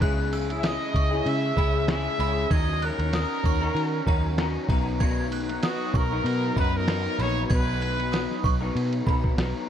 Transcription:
0.00 C#2 C#3 G#3 C#4 E4 G#4 F#6, kick, ride
0.33 E6, ride
0.49 C#4 E4 G#4, ride
0.60 E5, ride
0.64 D#5 D#6, snare
0.94 C#2 C#6, kick, ride
1.11 C#4 E4 G#4
1.26 C#3 E5, ride
1.57 C#2 G#3 C#4 E4 G#4 B5, kick, ride
1.88 G#3 C#4 E4 G#4 E5, snare, ride
2.19 C#2 G#3 C#4 E4 G#4 B5, ride
2.50 D#2 D#3 F#3 C#4 D#4 F#4 A#4 D#5 G#6, kick, ride
2.82 A#4 F#6, ride
2.98 D#2 C#4 D#4 A#4, ride
3.13 D#6, snare, ride
3.44 D#2 C#6, kick, ride
3.61 C#4 D#4 A#4
3.75 D#3, ride
4.06 D#2 F#3 C#4 D#4 A#4 A#5, kick, ride
4.38 F#3 C#4 D#4 A#4, snare, ride
4.69 B1 F#3 B3 D#4 A#4 A#5, kick, ride
5.00 B2 D#3 F#3 B3 D#4 A#4 G#6, kick, ride
5.32 F#6, ride
5.48 F#3 B3 D#4 A#4, ride
5.63 F#4 D#6, snare, ride
5.94 B1 A#4 C#6, kick, ride
6.11 F#3 B3 D#4 A#4
6.25 B2, ride
6.56 F#2 F#3 B3 D#4 A#4 B4 B5, kick, ride
6.77 A#4
6.87 F#3 B3 D#4 A#4, snare, ride
7.19 A#1 F#3 B3 D#4 A#4 C#5 B5, ride
7.46 C#5 G#6
7.50 B1 B2 D#3 F#3 B3 D#4 B4, kick, ride
7.81 F#6, ride
7.99 F#3 B3 D#4, ride
8.12 D#6, snare, ride
8.31 snare
8.44 B1 C#6, kick, ride
8.61 F#3 B3 D#4 A#4
8.75 B2, ride
8.93 ride
9.06 B2 F#3 B3 D#4 A#4 B5, kick, ride
9.24 kick
9.37 B1 F#3 B3 D#4 A#4, snare, ride

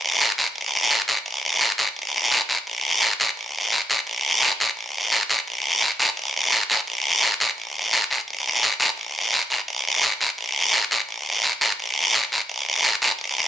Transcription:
0.21 short guiro
0.38 short guiro
0.56 long guiro
0.91 short guiro
1.08 short guiro
1.26 long guiro
1.61 short guiro
1.78 short guiro
1.96 long guiro
2.31 short guiro
2.49 short guiro
2.67 long guiro
3.02 short guiro
3.20 short guiro
3.37 long guiro
3.72 short guiro
3.90 short guiro
4.07 long guiro
4.42 short guiro
4.60 short guiro
4.77 long guiro
5.12 short guiro
5.30 short guiro
5.47 long guiro
5.82 short guiro
6.00 short guiro
6.17 long guiro
6.52 short guiro
6.70 short guiro
6.87 long guiro
7.23 short guiro
7.40 short guiro
7.58 long guiro
7.93 short guiro
8.10 short guiro
8.28 long guiro
8.63 short guiro
8.80 short guiro
8.98 long guiro
9.33 short guiro
9.50 short guiro
9.68 long guiro
10.03 short guiro
10.21 short guiro
10.38 long guiro
10.73 short guiro
10.91 short guiro
11.09 long guiro
11.44 short guiro
11.61 short guiro
11.80 long guiro
12.14 short guiro
12.32 short guiro
12.49 long guiro
12.84 short guiro
13.02 short guiro
13.19 long guiro

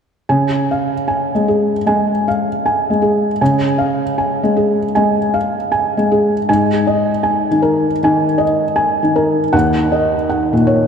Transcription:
0.29 C#3 G#5
0.71 F5
1.08 G#5
1.35 G#3
1.48 G#4
1.86 G#3 G#5
2.28 F5
2.66 G#5
2.90 G#3
3.02 G#4
3.41 C#3 G#5
3.78 F5
4.18 G#5
4.43 G#3
4.57 G#4
4.95 G#3 G#5
5.34 F5
5.72 G#5
5.97 G#3
6.12 G#4
6.49 G#2 G#5
6.87 D#5
7.23 G#5
7.51 D#3
7.62 A#4
8.03 D#3 G#5
8.38 D#5
8.76 G#5
9.03 D#3
9.16 A#4
9.53 D#2 F#5
9.92 D#5
10.29 F#5
10.53 A#2
10.67 C#5

